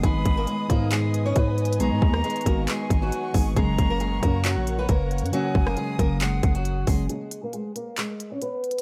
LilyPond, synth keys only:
\new Staff \with { instrumentName = "Synth keys" } { \time 4/4 \key gis \minor \tempo 4 = 136 <dis gis b dis'>4 r8 <dis gis b dis'>4. r4 | <dis gis b dis'>4 r8 <dis gis b fis'>4. r8 <dis gis b dis'>8 | <cis fis ais cis'>4 r8 <cis fis ais cis'>4. r4 | <cis fis ais cis'>4 r8 <cis fis ais cis'>4. r8 <cis fis ais cis'>8 |
r1 | }